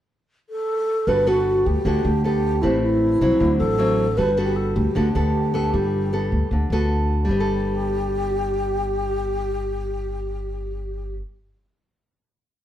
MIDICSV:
0, 0, Header, 1, 4, 480
1, 0, Start_track
1, 0, Key_signature, 1, "major"
1, 0, Tempo, 388601
1, 1325, Time_signature, 4, 2, 24, 8
1, 15617, End_track
2, 0, Start_track
2, 0, Title_t, "Alto flute"
2, 0, Program_c, 0, 73
2, 612, Note_on_c, 0, 69, 87
2, 1330, Note_on_c, 0, 71, 96
2, 1348, Note_off_c, 0, 69, 0
2, 1575, Note_on_c, 0, 66, 93
2, 1594, Note_off_c, 0, 71, 0
2, 2056, Note_on_c, 0, 67, 83
2, 2075, Note_off_c, 0, 66, 0
2, 2760, Note_off_c, 0, 67, 0
2, 2768, Note_on_c, 0, 67, 90
2, 3233, Note_on_c, 0, 64, 76
2, 3252, Note_off_c, 0, 67, 0
2, 3471, Note_off_c, 0, 64, 0
2, 3479, Note_on_c, 0, 64, 85
2, 4395, Note_off_c, 0, 64, 0
2, 4431, Note_on_c, 0, 69, 90
2, 5153, Note_on_c, 0, 71, 89
2, 5171, Note_off_c, 0, 69, 0
2, 5401, Note_off_c, 0, 71, 0
2, 5484, Note_on_c, 0, 67, 83
2, 5633, Note_on_c, 0, 69, 75
2, 5651, Note_off_c, 0, 67, 0
2, 5882, Note_on_c, 0, 67, 73
2, 5901, Note_off_c, 0, 69, 0
2, 8521, Note_off_c, 0, 67, 0
2, 9023, Note_on_c, 0, 67, 86
2, 13790, Note_off_c, 0, 67, 0
2, 15617, End_track
3, 0, Start_track
3, 0, Title_t, "Nylon-string guitar"
3, 0, Program_c, 1, 24
3, 1330, Note_on_c, 1, 55, 51
3, 1333, Note_on_c, 1, 59, 44
3, 1340, Note_on_c, 1, 69, 52
3, 1343, Note_on_c, 1, 66, 48
3, 1530, Note_off_c, 1, 59, 0
3, 1532, Note_off_c, 1, 66, 0
3, 1534, Note_off_c, 1, 69, 0
3, 1565, Note_on_c, 1, 59, 54
3, 1573, Note_on_c, 1, 66, 58
3, 1573, Note_on_c, 1, 69, 55
3, 2249, Note_off_c, 1, 59, 0
3, 2251, Note_off_c, 1, 66, 0
3, 2252, Note_off_c, 1, 69, 0
3, 2267, Note_off_c, 1, 55, 0
3, 2289, Note_on_c, 1, 50, 53
3, 2294, Note_on_c, 1, 59, 47
3, 2297, Note_on_c, 1, 66, 45
3, 2306, Note_on_c, 1, 69, 58
3, 2600, Note_off_c, 1, 66, 0
3, 2601, Note_off_c, 1, 59, 0
3, 2606, Note_off_c, 1, 69, 0
3, 2770, Note_on_c, 1, 59, 48
3, 2784, Note_on_c, 1, 69, 56
3, 3211, Note_off_c, 1, 59, 0
3, 3219, Note_off_c, 1, 69, 0
3, 3226, Note_off_c, 1, 50, 0
3, 3245, Note_on_c, 1, 57, 47
3, 3249, Note_on_c, 1, 60, 52
3, 3252, Note_on_c, 1, 67, 43
3, 3254, Note_on_c, 1, 71, 49
3, 3931, Note_off_c, 1, 60, 0
3, 3932, Note_off_c, 1, 67, 0
3, 3934, Note_off_c, 1, 71, 0
3, 3964, Note_off_c, 1, 57, 0
3, 3969, Note_on_c, 1, 54, 59
3, 3973, Note_on_c, 1, 60, 59
3, 3981, Note_on_c, 1, 64, 65
3, 4201, Note_on_c, 1, 50, 52
3, 4651, Note_off_c, 1, 54, 0
3, 4654, Note_off_c, 1, 60, 0
3, 4655, Note_off_c, 1, 64, 0
3, 4675, Note_on_c, 1, 54, 50
3, 4685, Note_on_c, 1, 60, 49
3, 4692, Note_on_c, 1, 64, 60
3, 5005, Note_off_c, 1, 54, 0
3, 5010, Note_off_c, 1, 60, 0
3, 5012, Note_off_c, 1, 64, 0
3, 5141, Note_off_c, 1, 50, 0
3, 5155, Note_on_c, 1, 55, 51
3, 5156, Note_on_c, 1, 59, 47
3, 5163, Note_on_c, 1, 66, 49
3, 5170, Note_on_c, 1, 69, 51
3, 5303, Note_off_c, 1, 59, 0
3, 5308, Note_off_c, 1, 66, 0
3, 5311, Note_off_c, 1, 69, 0
3, 5399, Note_on_c, 1, 59, 52
3, 5403, Note_on_c, 1, 66, 58
3, 5405, Note_on_c, 1, 69, 61
3, 6085, Note_off_c, 1, 59, 0
3, 6086, Note_off_c, 1, 66, 0
3, 6088, Note_off_c, 1, 69, 0
3, 6098, Note_off_c, 1, 55, 0
3, 6115, Note_on_c, 1, 50, 55
3, 6123, Note_on_c, 1, 59, 53
3, 6130, Note_on_c, 1, 66, 51
3, 6133, Note_on_c, 1, 69, 58
3, 6266, Note_off_c, 1, 59, 0
3, 6267, Note_off_c, 1, 66, 0
3, 6272, Note_off_c, 1, 69, 0
3, 6363, Note_on_c, 1, 59, 55
3, 6372, Note_on_c, 1, 69, 64
3, 6807, Note_off_c, 1, 59, 0
3, 6811, Note_off_c, 1, 69, 0
3, 6839, Note_on_c, 1, 59, 56
3, 6852, Note_on_c, 1, 69, 63
3, 7058, Note_off_c, 1, 50, 0
3, 7087, Note_on_c, 1, 55, 51
3, 7524, Note_off_c, 1, 59, 0
3, 7530, Note_off_c, 1, 69, 0
3, 7570, Note_on_c, 1, 59, 53
3, 7578, Note_on_c, 1, 69, 55
3, 8021, Note_off_c, 1, 55, 0
3, 8044, Note_off_c, 1, 59, 0
3, 8048, Note_off_c, 1, 69, 0
3, 8059, Note_on_c, 1, 50, 51
3, 8304, Note_on_c, 1, 59, 54
3, 8309, Note_on_c, 1, 66, 49
3, 8311, Note_on_c, 1, 69, 65
3, 8952, Note_on_c, 1, 55, 50
3, 8975, Note_off_c, 1, 59, 0
3, 8976, Note_off_c, 1, 66, 0
3, 8979, Note_off_c, 1, 69, 0
3, 8986, Note_off_c, 1, 50, 0
3, 9027, Note_on_c, 1, 59, 59
3, 9144, Note_on_c, 1, 69, 61
3, 13830, Note_off_c, 1, 55, 0
3, 13905, Note_off_c, 1, 59, 0
3, 14022, Note_off_c, 1, 69, 0
3, 15617, End_track
4, 0, Start_track
4, 0, Title_t, "Upright bass"
4, 0, Program_c, 2, 32
4, 1323, Note_on_c, 2, 31, 76
4, 1996, Note_off_c, 2, 31, 0
4, 2052, Note_on_c, 2, 38, 72
4, 2161, Note_off_c, 2, 38, 0
4, 2284, Note_on_c, 2, 38, 85
4, 2509, Note_off_c, 2, 38, 0
4, 2526, Note_on_c, 2, 38, 88
4, 3199, Note_off_c, 2, 38, 0
4, 3246, Note_on_c, 2, 33, 84
4, 3919, Note_off_c, 2, 33, 0
4, 3963, Note_on_c, 2, 36, 75
4, 4078, Note_off_c, 2, 36, 0
4, 4204, Note_on_c, 2, 38, 85
4, 4430, Note_off_c, 2, 38, 0
4, 4445, Note_on_c, 2, 33, 81
4, 5118, Note_off_c, 2, 33, 0
4, 5158, Note_on_c, 2, 31, 76
4, 5834, Note_off_c, 2, 31, 0
4, 5877, Note_on_c, 2, 38, 83
4, 5994, Note_off_c, 2, 38, 0
4, 6122, Note_on_c, 2, 38, 85
4, 6348, Note_off_c, 2, 38, 0
4, 6362, Note_on_c, 2, 38, 92
4, 7034, Note_off_c, 2, 38, 0
4, 7085, Note_on_c, 2, 31, 86
4, 7755, Note_off_c, 2, 31, 0
4, 7805, Note_on_c, 2, 38, 74
4, 7917, Note_off_c, 2, 38, 0
4, 8041, Note_on_c, 2, 38, 73
4, 8266, Note_off_c, 2, 38, 0
4, 8277, Note_on_c, 2, 38, 79
4, 8950, Note_off_c, 2, 38, 0
4, 9002, Note_on_c, 2, 31, 75
4, 13831, Note_off_c, 2, 31, 0
4, 15617, End_track
0, 0, End_of_file